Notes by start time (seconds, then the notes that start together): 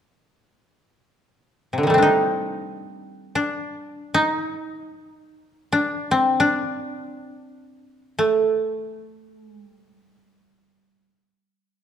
1.73 C3
1.78 D3
1.83 D#3 G3
1.90 A3
1.94 C4 D4
2.02 D#4
3.35 D4
4.14 D#4
5.72 D4
6.11 C4
6.40 D4
8.19 A3
9.43 G#3
9.73 G3